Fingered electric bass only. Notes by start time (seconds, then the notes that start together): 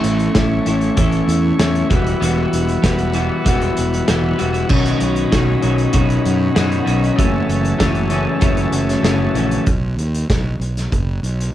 0.04 A1
0.35 A1
0.66 A1
0.97 A1
1.28 E2
1.59 E2
1.90 E1
2.22 E1
2.53 E1
2.83 E1
3.46 E1
3.78 E1
4.09 E1
4.41 E1
4.70 B1
5.02 B1
5.33 B1
5.63 B1
5.94 B1
6.26 F#2
6.57 F#2
6.87 B1
7.19 F#1
7.48 F#1
7.80 F#1
8.42 F#1
8.72 F#1
9.03 F#1
9.34 A#1
9.67 B1
9.96 D#2
10.30 B1
10.60 B1
10.92 F#1
11.23 B1